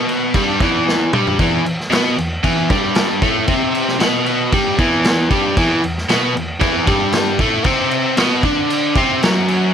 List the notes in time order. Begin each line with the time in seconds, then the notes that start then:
Already playing: B2 B3
0.09 crash
0.34 G2 G3, kick, crash
0.60 E2 E3, kick, crash
0.88 snare
1.13 G2 G3, mid tom
1.27 floor tom
1.39 E2 E3, kick, crash
1.66 E2, crash
1.80 snare
1.90 B2 B3, snare, crash
2.17 E2, crash
2.44 E2 E3, kick, crash
2.70 G2 G3, kick, crash
2.95 snare, crash
3.22 A2 A3, kick, crash
3.47 C3 C4, kick, crash
3.75 crash
3.88 snare
3.99 B2 B3, snare, crash
4.26 crash
4.52 G2 G3, kick, crash
4.78 E2 E3, kick, crash
5.04 snare, crash
5.30 G2 G3, kick, crash
5.57 E2 E3, kick, crash
5.83 E2, crash
5.98 snare
6.09 B2 B3, snare, crash
6.35 E2, crash
6.61 E2 E3, kick, crash
6.87 G2 G3, kick, crash
7.13 snare, crash
7.39 A2 A3, kick, crash
7.64 C3 C4, kick, crash
7.91 crash
8.17 B2 B3, snare, crash
8.43 D3 D4, kick, crash
8.70 crash
8.96 C3 C4, kick, crash
9.23 F#2 F#3, snare, crash
9.48 crash